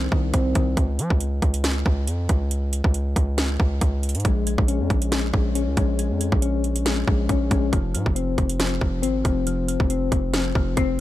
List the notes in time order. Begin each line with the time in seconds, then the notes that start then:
Already playing: D#3 C4
0.12 C2 D#3, kick
0.33 C2 C4, kick, closed hi-hat
0.55 C2 D#3, kick, closed hi-hat
0.77 C#2, kick, closed hi-hat
0.99 F3, closed hi-hat
1.10 C#2, kick
1.20 closed hi-hat
1.42 C#2, kick, closed hi-hat
1.54 closed hi-hat
1.64 snare, closed hi-hat
1.86 C#2, kick
2.07 F2, closed hi-hat
2.29 C#2, kick, closed hi-hat
2.51 closed hi-hat
2.73 closed hi-hat
2.84 C#2, kick
2.94 closed hi-hat
3.16 C#2, kick, closed hi-hat
3.38 snare, closed hi-hat
3.60 C#2, kick
3.81 C#2, kick, closed hi-hat
4.03 closed hi-hat
4.09 closed hi-hat
4.15 G#2, closed hi-hat
4.20 closed hi-hat
4.25 A#1 G#3, kick, closed hi-hat
4.47 G#3, closed hi-hat
4.58 A#1, kick
4.68 C#4, closed hi-hat
4.80 F2
4.90 A#1, kick, closed hi-hat
5.02 closed hi-hat
5.12 G#3, snare, closed hi-hat
5.34 A#1 G#3, kick
5.55 C#4, closed hi-hat
5.67 C#2
5.77 A#1 G#3, kick, closed hi-hat
5.99 G#3, closed hi-hat
6.10 F2
6.21 G#3, closed hi-hat
6.32 A#1, kick
6.42 C#4, closed hi-hat
6.64 closed hi-hat
6.76 closed hi-hat
6.86 G#3, snare, closed hi-hat
7.08 A#1 G#3, kick
7.29 A#1 C#4, kick, closed hi-hat
7.51 A#1 G#3, kick, closed hi-hat
7.72 F1 F3, kick, closed hi-hat
7.94 G#2 F3, closed hi-hat
8.06 F1, kick
8.15 C4, closed hi-hat
8.38 F1, kick, closed hi-hat
8.49 closed hi-hat
8.60 F3, snare, closed hi-hat
8.81 F1 F3, kick
9.02 G#1 C4, closed hi-hat
9.24 F1 F3, kick, closed hi-hat
9.47 F3, closed hi-hat
9.68 F3, closed hi-hat
9.80 F1, kick
9.90 C4, closed hi-hat
10.12 F1, kick, closed hi-hat
10.33 F3, snare, closed hi-hat
10.55 F1 F3, kick
10.77 F1 C4, kick, closed hi-hat